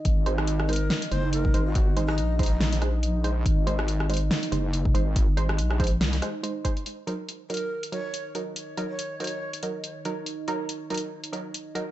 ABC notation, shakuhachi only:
X:1
M:4/4
L:1/16
Q:"Swing 16ths" 1/4=141
K:Ebdor
V:1 name="Shakuhachi"
z6 B3 z c2 B3 G- | G2 z E3 E4 z6 | z16 | z16 |
z6 B3 z d3 z3 | z3 d3 d4 z6 | z16 |]